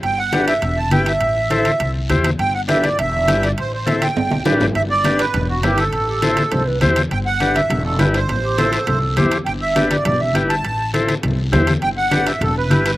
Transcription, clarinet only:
6.08 G4
6.22 A4
6.52 C5
6.67 B4
6.81 C5
8.45 G4
8.59 A4
8.88 A4
9.18 G4

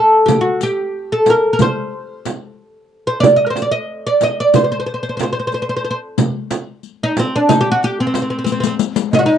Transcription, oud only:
Already playing: A4
0.26 G4
0.41 F#4
0.63 G4
1.12 A4
1.30 A#4
1.53 A#4
1.62 C5
3.07 C5
3.20 D5
3.36 D#5
3.46 A#4 C5
3.62 D5
3.72 D#5
4.07 D5
4.23 D#5
4.40 D5
4.56 C5
4.64 C5
4.72 C5
4.80 C5
4.86 C5
4.94 C5
5.03 C5
5.09 C5
5.17 C5
5.23 C5
5.33 C5
5.39 C5
5.47 C5
5.54 C5
5.62 C5
5.69 C5
5.77 C5
5.85 C5
5.91 C5
7.03 D#4
7.19 C4
7.36 D4
7.49 D#4
7.61 G4
7.72 F#4
7.84 G4
8.00 C4
8.07 C4
8.15 C4
8.22 C4
8.30 C4
8.39 C4
8.44 C4
8.52 C4
8.60 C4
8.67 C4
9.14 D#4
9.19 F#4
9.26 D#4

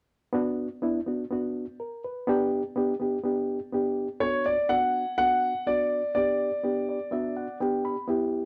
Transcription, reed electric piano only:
0.33 B3 D4 F#4
0.82 B3 D4 E4
1.06 B3 D4 F#4
1.31 B3 D4 F#4
1.80 A#4
2.04 B4
2.27 B3 D4 G4
2.76 B3 D4 G4
3.00 B3 D4 G4
3.23 B3 D4 G4
3.72 B3 D4 G4
4.21 B3 D4 F#4
4.69 B3 D4 F#4
5.18 B3 D4 F#4
5.67 B3 D4 F#4
6.15 B3 D4 G4
6.64 B3 D4 G4
6.89 D5
7.11 B3 D4 F#4 E5
7.37 F#5
7.60 B3 D4 G4 G5
7.85 B5
8.08 B3 E4 G4

